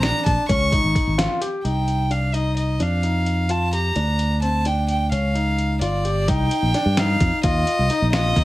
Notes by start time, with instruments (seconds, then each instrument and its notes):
Already playing: fingered electric bass A#1
0.02 grand piano D4, violin A#5, snare, closed hi-hat
0.26 fingered electric bass A#1, violin A5, kick, closed hi-hat
0.49 fingered electric bass C#2, grand piano C#4, violin C#6, kick, closed hi-hat
0.72 grand piano D#4, kick, closed hi-hat
0.84 fingered electric bass G#1
0.95 kick, closed hi-hat
1.07 fingered electric bass G#1
1.18 grand piano F4, snare, closed hi-hat
1.41 grand piano G4, closed hi-hat
1.64 fingered electric bass C2, grand piano D#4, violin G5, closed hi-hat
1.88 closed hi-hat
2.10 grand piano D4, violin F5, closed hi-hat
2.33 grand piano D#4, violin D#5, closed hi-hat
2.57 violin D#5, closed hi-hat
2.80 fingered electric bass F2, grand piano D4, violin F5, closed hi-hat
3.03 grand piano D#4, closed hi-hat
3.26 closed hi-hat
3.49 grand piano F4, violin A5, closed hi-hat
3.73 grand piano G4, violin A#5, closed hi-hat
3.96 fingered electric bass D2, grand piano D4, closed hi-hat
4.19 closed hi-hat
4.42 grand piano C4, violin A5, closed hi-hat
4.65 grand piano D4, violin G5, closed hi-hat
4.88 violin G5, closed hi-hat
5.12 fingered electric bass C#2, grand piano C#4, violin F5, closed hi-hat
5.35 grand piano D#4, closed hi-hat
5.58 closed hi-hat
5.81 fingered electric bass G1, grand piano F4, violin D5, closed hi-hat
6.05 grand piano G4, closed hi-hat
6.28 fingered electric bass C2, grand piano D#4, violin G5, kick, closed hi-hat
6.51 closed hi-hat
6.62 fingered electric bass A#1
6.74 grand piano D4, snare, closed hi-hat
6.86 fingered electric bass G2
6.97 grand piano D#4, violin F5, snare, closed hi-hat
7.20 fingered electric bass F2, kick, closed hi-hat
7.43 fingered electric bass D#2, grand piano F4, violin D#5, kick, closed hi-hat
7.67 closed hi-hat
7.79 fingered electric bass C2
7.90 grand piano D#4, closed hi-hat
8.02 fingered electric bass A#1
8.13 grand piano F4, violin D#5, snare, closed hi-hat
8.36 fingered electric bass D#2, grand piano D#4, kick, snare, closed hi-hat